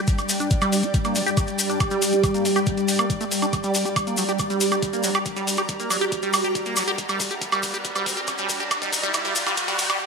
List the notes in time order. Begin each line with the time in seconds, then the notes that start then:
Already playing: G3 G4 D5 G5
0.07 kick, closed hi-hat, maracas
0.18 closed hi-hat, high woodblock, maracas
0.29 open hi-hat, maracas
0.40 D4, closed hi-hat, maracas
0.50 kick, closed hi-hat, maracas
0.62 G3, closed hi-hat, high woodblock, maracas
0.72 open hi-hat, maracas
0.83 G4, closed hi-hat, maracas
0.94 kick, closed hi-hat, maracas
1.05 A#3, closed hi-hat, high woodblock, maracas
1.15 F#3, open hi-hat, maracas
1.26 G4, closed hi-hat, maracas
1.37 kick, closed hi-hat, high woodblock, maracas
1.47 closed hi-hat, maracas
1.59 open hi-hat, maracas
1.70 D4, closed hi-hat, maracas
1.80 kick, closed hi-hat, high woodblock, maracas
1.91 G3, closed hi-hat, maracas
2.02 open hi-hat, maracas
2.13 G4, closed hi-hat, maracas
2.24 kick, closed hi-hat, high woodblock, maracas
2.34 A#3, closed hi-hat, maracas
2.45 F#3, open hi-hat, maracas
2.56 G4, closed hi-hat, high woodblock, maracas
2.66 kick, closed hi-hat, maracas
2.78 closed hi-hat, maracas
2.88 open hi-hat, maracas
2.99 A#3, closed hi-hat, high woodblock, maracas
3.10 kick, closed hi-hat, maracas
3.21 A3, closed hi-hat, maracas
3.31 open hi-hat, maracas
3.42 D4, closed hi-hat, high woodblock, maracas
3.53 F#4, kick, closed hi-hat, riser, high woodblock, maracas
3.64 G3, closed hi-hat, maracas
3.74 A#5, open hi-hat, maracas
3.85 G4, closed hi-hat, maracas
3.96 kick, closed hi-hat, high woodblock, maracas
4.07 A#3, closed hi-hat, maracas
4.17 F#3, open hi-hat, maracas
4.29 G4, closed hi-hat, maracas
4.39 kick, closed hi-hat, high woodblock, maracas
4.50 G3, closed hi-hat, maracas
4.61 open hi-hat, maracas
4.72 G4, closed hi-hat, high woodblock, maracas
4.83 kick, closed hi-hat, maracas
4.93 A#3, closed hi-hat, maracas
5.03 F#3, open hi-hat, maracas
5.15 G4, closed hi-hat, high woodblock, maracas
5.26 kick, closed hi-hat, maracas
5.36 G3, closed hi-hat, maracas
5.47 open hi-hat, maracas
5.57 G4, closed hi-hat, high woodblock, maracas
5.69 kick, closed hi-hat, maracas
5.80 A#3, closed hi-hat, maracas
5.90 F#3, open hi-hat, high woodblock, maracas
6.01 G4, closed hi-hat, maracas
6.12 kick, closed hi-hat, maracas
6.23 G3, closed hi-hat, maracas
6.33 open hi-hat, high woodblock, maracas
6.44 G4, closed hi-hat, maracas
6.55 kick, closed hi-hat, maracas
6.66 A#3, closed hi-hat, maracas
6.76 F#3, open hi-hat, high woodblock, maracas
6.87 G4, closed hi-hat, maracas
6.98 kick, closed hi-hat, maracas
7.09 G3, closed hi-hat, high woodblock, maracas
7.20 kick, open hi-hat, maracas
7.31 G4, closed hi-hat, maracas
7.42 kick, closed hi-hat, maracas
7.52 G3, closed hi-hat, high woodblock, maracas
7.63 kick, open hi-hat, maracas
7.74 G4, closed hi-hat, maracas
7.85 kick, closed hi-hat, maracas
7.95 G3, closed hi-hat, high woodblock, maracas
8.06 kick, open hi-hat, maracas
8.17 G4, closed hi-hat, maracas
8.27 kick, closed hi-hat, high woodblock, maracas
8.38 G3, closed hi-hat, maracas
8.49 kick, open hi-hat, maracas
8.60 G4, closed hi-hat, maracas
8.71 kick, closed hi-hat, high woodblock, maracas
8.82 G3, kick, closed hi-hat, maracas
8.93 kick, open hi-hat, maracas
9.03 G3, kick, closed hi-hat, maracas
9.13 kick, closed hi-hat, high woodblock, maracas
9.25 G3, kick, closed hi-hat, maracas
9.35 kick, open hi-hat, maracas
9.47 G3, kick, closed hi-hat, high woodblock, maracas
9.57 kick, closed hi-hat, maracas
9.68 G3, kick, closed hi-hat, maracas
9.78 kick, open hi-hat, maracas
9.90 G3, kick, closed hi-hat, high woodblock, maracas